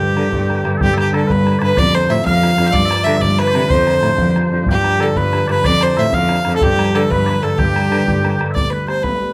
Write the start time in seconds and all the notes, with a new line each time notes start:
Already playing: G3 D4 F4 G4
0.01 G4 A4 B4
0.17 D3 G4 A4 B4, bodhran
0.32 G2 D3, bodhran
0.49 G4 A4 B4, bodhran
0.65 G2 G4 A4 B4, bodhran
0.77 G2 G3 G4 A4, bodhran
0.83 G4
0.93 D4 A4
0.98 G4 B4, bodhran
1.11 D3 D4 G4 A4, bodhran
1.16 A4 B4
1.27 G2 D3 B4, bodhran
1.31 B4
1.46 D4 G4 B4, bodhran
1.59 G2 D4 G4 B4 D5, bodhran
1.63 B4
1.76 F2 F3 D5, bodhran
1.94 D4 F4 C5, bodhran
2.09 A2 D4 F4 C5 E5, bodhran
2.25 F2 F3 F5, bodhran
2.43 D4 F4 C5, bodhran
2.58 F2 D4 F4 C5, bodhran
2.67 E5 G5
2.72 G2 G3 D5, bodhran
2.86 E5
2.90 D4 G4 B4 D5, bodhran
3.04 D3 D4 G4 E5, bodhran
3.08 B4
3.17 G2 D5 E5
3.22 D3, bodhran
3.38 D4 G4 B4, bodhran
3.43 B4
3.47 C5 D5
3.54 C3 D4 G4 B4, bodhran
3.69 F2 F3 C5, bodhran
3.87 D4 F4 C5, bodhran
4.02 A2 D4 F4 C5, bodhran
4.18 F2 F3, bodhran
4.35 D4 F4, bodhran
4.51 F2 D4 F4 C5
4.66 G2 G3 G4, bodhran
4.70 G4
4.84 D4 G4 B4, bodhran
4.99 D3 D4 G4 A4 B4, bodhran
5.15 G2 D3 B4, bodhran
5.33 D4 G4 B4, bodhran
5.47 G2 D4 G4 B4 D5, bodhran
5.64 F2 F3 D5, bodhran
5.81 D4 F4 C5, bodhran
5.97 A2 D4 F4 C5 E5, bodhran
6.12 F2 F3 F5, bodhran
6.29 D4 F4 C5, bodhran
6.44 F2 D4 F4, bodhran
6.48 C5
6.55 A4
6.60 G2 G3 G4, bodhran
6.77 D4 B4, bodhran
6.92 D3 D4 G4 A4 B4, bodhran
7.09 G2 D3 B4, bodhran
7.26 D4 G4 B4 D5, bodhran
7.30 B4
7.42 G2 D4 G4 A4 B4, bodhran
7.57 G2 G3 G4, bodhran
7.75 G4 A4 B4, bodhran
7.90 D3 G4 A4 B4, bodhran
8.06 G2 D3, bodhran
8.24 G4 A4 B4, bodhran
8.39 G2 G4 A4 B4, bodhran
8.51 D5 E5
8.55 G2 D5, bodhran
8.70 A3 B3 G4 B4
8.87 A3 B3 G4 C5, bodhran
9.03 D2 B4, bodhran
9.20 A3 B3 G4, bodhran